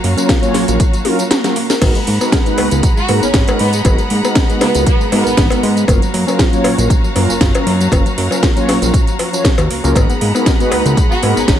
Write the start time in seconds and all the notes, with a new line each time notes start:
Already playing: F#4 C#5 F5 A#5
0.04 F#2 A#3, open hi-hat
0.15 F#3 A#3 C#4 F4 A#4, closed hi-hat, tambourine
0.29 F4, kick, snare, closed hi-hat, tambourine
0.41 F#3 A#3 C#4 F4 C#5, closed hi-hat, tambourine
0.54 A#1 A#3, snare, open hi-hat
0.67 A#1 F#3 A#3 C#4 F4 A#4, closed hi-hat, tambourine
0.80 F3, kick, closed hi-hat, tambourine
0.94 F#3, closed hi-hat, tambourine
1.04 F#3 A#3 C#4 F4 A#4, open hi-hat, high tom
1.19 A#4, closed hi-hat, tambourine
1.31 F#4, snare, closed hi-hat, mid tom, tambourine
1.44 F#3 A#3 C#4 F4 F#4 A#4, snare, closed hi-hat, tambourine
1.56 A#3, open hi-hat
1.70 A#4, snare, closed hi-hat, tambourine
1.81 G#1 F#3 G#3 B3 D#4 F#4 G#4 A#4 F#5 A#5 B5, kick, closed hi-hat, crash, tambourine, cowbell
1.95 G#3, closed hi-hat, tambourine
2.07 G#2 A#3, open hi-hat
2.20 G#3 B3 D#4 F#4 A#4, tambourine, cowbell
2.32 D#4, kick, snare, closed hi-hat, tambourine
2.45 G#3 B3 D#4 F#4 B4, closed hi-hat, tambourine
2.58 C#2 A#3, open hi-hat, cowbell
2.71 C#2 G#3 B3 D#4, closed hi-hat, tambourine
2.83 F#3, kick, closed hi-hat, tambourine
2.97 G#3 F#4, tambourine
3.08 G#2 G#3 A#3 B3 D#4 F#4 A#4, open hi-hat, cowbell
3.22 G#1 B3 C#4, tambourine
3.34 G#1 D#4, kick, snare, closed hi-hat, tambourine
3.47 G#3 B3 D#4 F#4 A#4, closed hi-hat, tambourine, cowbell
3.59 G#2 A#3 B3, open hi-hat
3.73 G#3, closed hi-hat, tambourine
3.84 G#1 F#3 G#3 B3 D#4 F#4 A#4, kick, closed hi-hat, tambourine, cowbell
3.98 G#3, closed hi-hat, tambourine
4.10 G#2 A#3, open hi-hat
4.23 G#3 B3 D#4 F#4 A#4, tambourine, cowbell
4.35 D#4, kick, snare, closed hi-hat, tambourine
4.49 G#3 B3 D#4 F#4 B4, closed hi-hat, tambourine
4.61 C#2 A#3 B3, snare, open hi-hat, cowbell
4.74 C#2 G#3 B3 D#4 F#4 A#4, closed hi-hat, tambourine
4.86 F#3 B3, kick, closed hi-hat, tambourine
5.00 G#3, tambourine
5.11 G#2 G#3 A#3 B3 D#4 F#4 A#4, open hi-hat, cowbell
5.26 G#1 B3, tambourine
5.37 G#1 D#4, kick, snare, closed hi-hat, tambourine
5.50 G#3 B3 D#4 F#4 A#4, closed hi-hat, tambourine, cowbell
5.63 G#2 A#3, open hi-hat
5.76 G#3, closed hi-hat, tambourine
5.87 F#1 F3 F#3 A#3 C#4 F4 F#4 A#4 C#5 F5 A#5, kick, closed hi-hat, tambourine, cowbell
6.02 F#3, closed hi-hat, tambourine
6.13 F#2 A#3, open hi-hat
6.27 F#3 A#3 C#4 F4 A#4, tambourine, cowbell
6.39 F4, kick, snare, closed hi-hat, tambourine
6.52 F#3 A#3 C#4 F4 C#5, closed hi-hat, tambourine
6.64 A#1 A#3, open hi-hat, cowbell
6.78 A#1 F#3 A#3 C#4 F4 A#4, closed hi-hat, tambourine
6.90 F3, kick, closed hi-hat, tambourine
7.03 F#3, tambourine
7.15 F#2 F#3 A#3 C#4 F4 A#4, open hi-hat, cowbell
7.29 F#1 C#4, tambourine
7.41 F#1 F4, kick, snare, closed hi-hat, tambourine
7.54 F#3 A#3 C#4 F4 A#4, closed hi-hat, tambourine, cowbell
7.66 F#2 A#3, open hi-hat
7.80 F#3, closed hi-hat, tambourine
7.91 F#1 F3 F#3 A#3 C#4 F4 A#4, kick, closed hi-hat, tambourine, cowbell
8.06 F#3, closed hi-hat, tambourine
8.17 F#2 A#3, open hi-hat
8.30 F#3 A#3 C#4 F4 A#4, tambourine, cowbell
8.43 F4, kick, snare, closed hi-hat, tambourine
8.55 F#3 A#3 C#4 F4 C#5, closed hi-hat, tambourine
8.68 A#1 A#3, snare, open hi-hat, cowbell
8.81 A#1 F#3 A#3 C#4 F4 A#4, closed hi-hat, tambourine
8.94 F3, kick, closed hi-hat, tambourine
9.07 F#3, closed hi-hat, tambourine
9.19 F3, open hi-hat, cowbell
9.31 F3 F#3 A#3 C#4 F4 C#5, closed hi-hat, tambourine
9.45 F3, kick, snare, closed hi-hat, tambourine
9.58 D#2 F#4, closed hi-hat, tambourine, cowbell
9.70 C#2 A#3, open hi-hat
9.83 C#2 F#3 A#3 C#4 F4 A#4, closed hi-hat, tambourine
9.94 G#1 F#3 G#3 B3 D#4 F#4 G#4 A#4 F#5 A#5 B5, kick, closed hi-hat, tambourine, cowbell
10.09 B3, closed hi-hat, tambourine
10.21 G#2 A#3, open hi-hat
10.34 G#3 B3 D#4 F#4 A#4, tambourine, cowbell
10.46 D#4, kick, snare, closed hi-hat, tambourine
10.60 G#3 B3 D#4 F#4 B4, closed hi-hat, tambourine
10.72 C#2 A#3, open hi-hat, cowbell
10.85 C#2 G#3 B3 D#4 F#4 A#4, closed hi-hat, tambourine
10.97 F#3, kick, closed hi-hat, tambourine
11.10 B3 F#4, tambourine
11.22 G#2 G#3 A#3 B3 D#4 F#4 A#4, open hi-hat, cowbell
11.36 G#1 B3 C#4, tambourine
11.48 G#1 D#4, kick, snare, closed hi-hat, tambourine